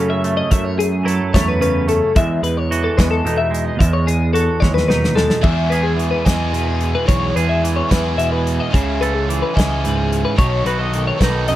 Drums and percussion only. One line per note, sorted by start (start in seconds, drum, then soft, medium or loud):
0.24 closed hi-hat medium
0.51 kick medium
0.51 closed hi-hat medium
0.80 closed hi-hat medium
1.08 closed hi-hat medium
1.34 kick medium
1.34 snare loud
1.34 closed hi-hat medium
1.62 closed hi-hat medium
1.88 closed hi-hat medium
2.16 kick loud
2.16 closed hi-hat medium
2.44 closed hi-hat medium
2.72 closed hi-hat medium
2.99 kick medium
2.99 snare loud
2.99 closed hi-hat medium
3.26 closed hi-hat medium
3.54 closed hi-hat medium
3.80 kick medium
3.80 closed hi-hat medium
4.08 closed hi-hat medium
4.35 closed hi-hat medium
4.62 kick medium
4.62 snare medium
4.77 snare medium
4.90 snare medium
5.04 snare medium
5.17 snare medium
5.30 snare medium
5.44 kick loud
5.44 crash medium
5.72 closed hi-hat medium
5.99 closed hi-hat medium
6.26 kick medium
6.26 snare loud
6.26 closed hi-hat medium
6.54 closed hi-hat medium
6.81 closed hi-hat medium
7.09 kick medium
7.09 closed hi-hat medium
7.37 closed hi-hat medium
7.65 closed hi-hat medium
7.91 kick medium
7.91 snare loud
7.91 closed hi-hat medium
8.19 closed hi-hat medium
8.47 closed hi-hat medium
8.74 kick loud
8.74 closed hi-hat medium
9.02 closed hi-hat medium
9.30 closed hi-hat medium
9.57 kick medium
9.57 snare loud
9.57 closed hi-hat medium
9.85 closed hi-hat medium
10.13 closed hi-hat medium
10.39 kick loud
10.39 closed hi-hat medium
10.66 closed hi-hat medium
10.93 closed hi-hat medium
11.21 kick medium
11.21 snare loud
11.21 closed hi-hat medium
11.48 closed hi-hat medium